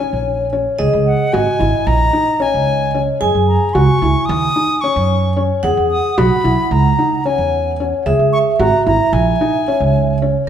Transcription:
0.00 0.44 C#4 medium
0.00 0.48 C#5 medium
0.00 0.52 G#5 medium
0.13 0.66 A#1 medium
0.53 0.75 C#4 medium
0.79 0.90 C#2 medium
0.79 1.24 G#4 medium
0.79 3.28 D#5 medium
0.93 1.14 C#2 medium
1.06 1.34 F#5 medium
1.33 1.44 G#1 loud
1.33 1.56 F#4 medium
1.33 1.88 G#5 loud
1.59 1.71 G#1 medium
1.59 2.04 E4 medium
1.87 2.08 A#1 loud
1.87 2.44 A#5 loud
2.13 2.36 D#4 medium
2.40 2.85 C#4 medium
2.40 3.02 G#5 medium
2.54 3.07 C#2 medium
2.94 3.17 C#4 medium
3.20 3.32 F#2 medium
3.20 3.66 G#4 medium
3.20 5.70 G#5 loud
3.35 3.56 F#2 medium
3.47 3.75 A#5 medium
3.74 3.86 C#2 loud
3.74 3.97 F#4 medium
3.74 4.27 C#6 medium
4.02 4.12 C#2 medium
4.02 4.47 E4 medium
4.25 4.50 D#2 loud
4.25 4.83 D#6 loud
4.56 4.78 D#4 medium
4.81 5.28 C#4 medium
4.81 5.42 C#6 medium
4.96 5.49 F#2 medium
5.37 5.59 C#4 medium
5.63 5.74 E2 medium
5.63 6.09 G#4 medium
5.63 8.13 F#5 medium
5.77 5.98 E2 medium
5.91 6.20 D#6 medium
6.18 6.28 B1 loud
6.18 6.40 F#4 medium
6.18 6.73 B5 loud
6.44 6.55 B1 medium
6.44 6.89 E4 medium
6.71 6.92 C#2 loud
6.71 7.28 A#5 medium
6.99 7.21 D#4 medium
7.25 7.70 C#4 medium
7.25 7.86 G#5 medium
7.38 7.92 E2 medium
7.80 8.02 C#4 medium
8.06 8.16 C#2 medium
8.06 8.51 G#4 medium
8.06 10.17 E5 medium
8.19 8.40 C#2 medium
8.33 8.39 C#6 medium
8.59 8.70 G#1 loud
8.59 8.82 F#4 medium
8.59 8.85 A#5 medium
8.86 8.97 G#1 medium
8.86 9.31 E4 medium
8.86 9.15 A#5 medium
9.13 9.34 A#1 loud
9.13 10.21 G#5 medium
9.41 9.63 D#4 medium
9.68 10.13 C#4 medium
9.80 10.34 C#2 medium
10.22 10.44 C#4 medium

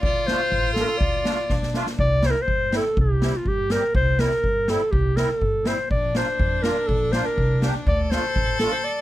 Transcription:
0.01 0.32 D2 medium
0.01 1.52 F4 loud
0.01 0.28 D5 loud
0.01 kick medium
0.27 0.40 A3 medium
0.27 0.41 D4 medium
0.27 0.41 F4 medium
0.27 0.72 C5 loud
0.27 snare medium
0.51 0.81 A1 medium
0.51 kick medium
0.73 0.82 A4 medium
0.73 snare medium
0.77 0.89 A3 medium
0.77 0.89 D4 medium
0.77 0.90 F4 medium
0.77 0.86 A#4 medium
0.84 1.00 A4 medium
0.98 1.30 D2 medium
0.98 1.73 D5 loud
0.98 kick medium
1.24 1.37 A3 medium
1.24 1.37 D4 medium
1.24 1.38 F4 medium
1.24 snare medium
1.50 1.79 B1 medium
1.50 1.99 D4 medium
1.50 kick medium
1.50 snare medium
1.63 snare soft
1.74 1.86 A3 medium
1.74 1.87 D4 medium
1.74 1.87 F4 medium
1.74 snare medium
1.87 snare medium
1.99 2.28 C2 medium
1.99 2.28 D5 loud
1.99 kick medium
2.22 2.35 G3 medium
2.22 2.35 C4 medium
2.22 2.36 E4 medium
2.22 2.32 C5 loud
2.22 snare medium
2.31 2.43 A#4 loud
2.42 2.78 C5 loud
2.47 2.77 G2 medium
2.47 kick medium
2.72 2.84 G3 medium
2.72 2.84 C4 medium
2.72 2.85 E4 medium
2.72 snare medium
2.77 2.99 A4 medium
2.97 3.26 C2 medium
2.97 3.38 G4 medium
2.97 kick medium
3.21 3.33 G3 medium
3.21 3.34 C4 medium
3.21 3.34 E4 medium
3.21 snare medium
3.37 3.49 F4 medium
3.45 3.75 G2 medium
3.45 3.73 G4 loud
3.45 kick medium
3.70 3.83 G3 medium
3.70 3.83 C4 medium
3.70 3.84 G4 medium
3.70 3.95 A#4 loud
3.70 snare medium
3.95 4.24 C2 loud
3.95 4.21 C5 loud
3.95 kick medium
4.19 4.31 G3 medium
4.19 4.32 C4 medium
4.19 4.32 E4 medium
4.19 4.71 A#4 loud
4.19 snare medium
4.31 snare soft
4.44 4.73 G2 medium
4.44 kick medium
4.68 4.81 G3 medium
4.68 4.81 C4 medium
4.68 4.81 E4 medium
4.68 4.93 A4 loud
4.68 snare medium
4.91 5.22 C2 medium
4.91 5.18 G4 medium
4.91 kick medium
5.15 5.29 G3 medium
5.15 5.29 C4 medium
5.15 5.30 E4 medium
5.15 5.32 A#4 loud
5.15 snare medium
5.30 5.69 A4 medium
5.41 5.71 G2 medium
5.41 kick medium
5.64 5.77 G3 medium
5.64 5.78 C4 medium
5.64 5.78 E4 medium
5.64 5.90 C5 medium
5.64 snare medium
5.90 6.20 A#1 medium
5.90 7.89 D4 medium
5.90 6.18 D5 medium
5.90 kick medium
6.14 6.27 A#3 medium
6.14 6.27 D4 medium
6.14 6.28 F4 medium
6.14 6.64 C5 medium
6.14 snare medium
6.39 6.69 F2 medium
6.39 kick medium
6.62 6.76 A#3 medium
6.62 6.77 D4 medium
6.62 6.77 F4 medium
6.62 6.89 A#4 medium
6.62 snare medium
6.87 7.18 A#1 loud
6.87 7.13 A4 medium
6.87 kick medium
7.12 7.25 A#3 medium
7.12 7.26 D4 medium
7.12 7.26 F4 medium
7.12 7.27 C5 medium
7.12 snare medium
7.25 7.62 A#4 medium
7.37 7.67 C2 medium
7.37 kick medium
7.61 7.74 A#3 medium
7.61 7.75 D4 medium
7.61 7.75 G4 medium
7.61 snare medium
7.86 8.16 D2 loud
7.86 9.01 A4 loud
7.86 8.03 D5 loud
7.86 kick medium
8.03 8.12 D5 medium
8.11 8.23 A3 medium
8.11 8.24 D4 medium
8.11 8.24 F4 medium
8.11 8.59 C5 loud
8.11 snare medium
8.36 8.65 A1 medium
8.36 kick medium
8.59 8.73 A3 medium
8.59 8.73 D4 medium
8.59 8.73 F4 medium
8.59 8.74 A4 loud
8.59 snare medium
8.72 8.86 C5 medium
8.84 9.01 D5 medium

